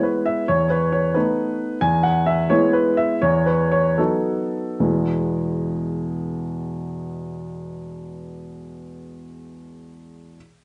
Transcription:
Already playing: G#3 B3 E4
0.03 B4
0.26 E5
0.48 E2 C#5
0.70 B4
0.92 C#5
1.14 A3 B3 D#4 B4
1.81 E2 G#5
2.03 F#5
2.26 E5
2.50 G#3 B3 E4 C#5
2.73 B4
2.97 E5
3.22 E2 C#5
3.46 B4
3.72 C#5
3.98 F#3 B3 D#4 A4
4.80 E2 B2 G#3 B3 E4

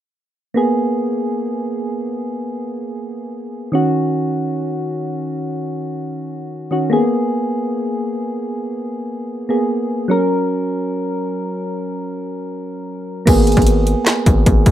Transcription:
0.54 A#3 B3 G#4
3.72 D#3 C#4 F#4
6.71 D#3 C#4 F#4
6.90 A#3 B3 G#4
9.49 A#3 B3 G#4
10.08 F#3 C#4 A#4
13.26 G#1 A#3 B3 G#4, kick, closed hi-hat, crash
13.47 closed hi-hat
13.52 closed hi-hat
13.57 G#1, kick, closed hi-hat
13.62 closed hi-hat
13.67 closed hi-hat
13.87 closed hi-hat
14.06 snare, clap, closed hi-hat
14.26 G#1, kick, closed hi-hat
14.46 G#1, kick, closed hi-hat
14.66 G#1, kick, closed hi-hat

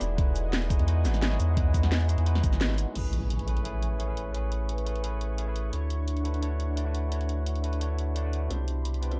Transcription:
Already playing: G#3 D#4 E4 F#4 G#4
0.01 E1 D#5 F#5 G#5, closed hi-hat, shaker
0.15 G#3 D#4 E4, kick, closed hi-hat
0.20 F#4 B4
0.36 closed hi-hat, shaker
0.53 snare, closed hi-hat
0.62 closed hi-hat
0.69 G#3 D#4 E4 F#4 G#4, kick, closed hi-hat, shaker
0.79 E2, closed hi-hat
0.86 G#3 D#4 E4 F#4 B4, closed hi-hat
1.05 G#1, snare, closed hi-hat, shaker
1.14 snare, shaker
1.21 G#3 D#4 E4 F#4 C#5, snare, closed hi-hat
1.30 G#3 D#4 E4 F#4 G#4, snare
1.40 E2, closed hi-hat, shaker
1.54 G#3 D#4 E4, kick, closed hi-hat
1.58 F#4 B4
1.74 kick, closed hi-hat, shaker
1.83 snare, closed hi-hat
1.92 snare, closed hi-hat
2.01 closed hi-hat
2.07 G#3 D#4 E4 F#4 G#4, closed hi-hat, shaker
2.18 E2, closed hi-hat
2.25 G#3 D#4 E4 F#4 B4, closed hi-hat
2.35 snare
2.40 G#1 G#3 D#4 E4, kick, closed hi-hat, shaker
2.45 F#4 D#5
2.53 snare, shaker
2.61 snare, closed hi-hat
2.70 snare
2.78 closed hi-hat, shaker
2.92 A1 A3 C#4 E4 B4 G#5 C#6, closed hi-hat, crash, impact
2.97 G#4 B4
3.13 closed hi-hat
3.30 closed hi-hat
3.39 closed hi-hat
3.46 A3 C#4 E4 G#4 B4, closed hi-hat
3.57 closed hi-hat
3.63 A3 C#4 E4 G#4 B4, closed hi-hat
3.82 closed hi-hat
3.98 A3 C#4 E4 G#4 C#5, closed hi-hat
4.07 A3 C#4 E4 G#4 B4
4.17 closed hi-hat
4.32 A3 C#4 E4, closed hi-hat
4.36 G#4 B4
4.52 closed hi-hat
4.69 closed hi-hat
4.78 closed hi-hat
4.85 A3 C#4 E4 G#4 B4, closed hi-hat
4.96 closed hi-hat
5.02 A3 C#4 E4 G#4 B4, closed hi-hat
5.21 closed hi-hat
5.37 A3 C#4 E4 G#4 C#5, closed hi-hat
5.46 A3 C#4 E4 G#4 B4
5.56 closed hi-hat
5.70 D2 A3 D4 E4 F#5, closed hi-hat
5.75 F#4 C#5
5.90 closed hi-hat
6.08 closed hi-hat
6.17 closed hi-hat
6.23 A3 D4 E4 F#4 B4, closed hi-hat
6.34 closed hi-hat
6.41 A3 D4 E4 F#4 C#5, closed hi-hat
6.60 closed hi-hat
6.75 A3 D4 E4 F#4 D5, closed hi-hat
6.85 A3 D4 E4 F#4 B4
6.95 closed hi-hat
7.09 A3 D4 E4, closed hi-hat
7.13 F#4 C#5
7.21 closed hi-hat
7.29 closed hi-hat
7.46 closed hi-hat
7.55 closed hi-hat
7.62 A3 D4 E4 F#4 B4, closed hi-hat
7.73 closed hi-hat
7.80 A3 D4 E4 F#4 C#5, closed hi-hat
7.99 closed hi-hat
8.14 A3 D4 E4 F#4 D5, closed hi-hat
8.23 A3 D4 E4 F#4 B4
8.33 closed hi-hat
8.47 C2 B2 D4 E4 C5 D5 B5 C6, closed hi-hat
8.52 G4 C5
8.68 closed hi-hat
8.85 closed hi-hat
8.94 closed hi-hat
9.01 B3 D4 E4 G4 B4, closed hi-hat
9.11 C5, closed hi-hat

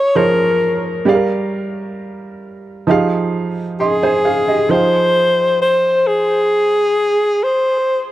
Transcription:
Already playing: F3 F4 G#4 C#5
0.15 F3 F4 G#4 A#4 C5 C#5
1.05 G3 G4 G#4 D5 F5
1.13 A#4
2.87 F3 D#4 G4 G#4 F5
3.80 G#4 D#5 C6
4.03 C5 G#5
4.25 G#4 F5
4.48 G4 D#5
4.69 F3 D#4 G#4 C5 F5 G5
5.62 C5
6.07 G#4
7.43 C5

